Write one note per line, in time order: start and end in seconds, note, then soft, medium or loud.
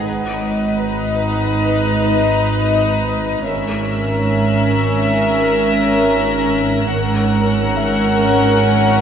0.00 0.46 C#4 soft
0.00 0.46 C#5 soft
0.00 2.16 F#5 soft
0.05 3.45 G#1 soft
0.05 3.46 G#2 soft
0.05 3.45 D#4 soft
0.05 3.45 B4 soft
0.05 3.45 D#5 soft
3.48 6.88 G#1 soft
3.48 6.88 G#2 soft
3.48 6.88 C#4 soft
3.48 6.88 A#4 soft
3.48 6.88 E5 soft
3.48 9.01 E6 soft
3.48 7.65 F#6 soft
5.21 8.72 A#6 soft
6.91 9.01 G#1 soft
6.91 9.01 G#2 soft
6.91 9.01 C#4 soft
6.91 9.01 A#4 soft
6.91 9.01 F#5 soft
7.65 9.01 F6 soft
7.77 9.01 E5 soft
8.72 9.01 B6 soft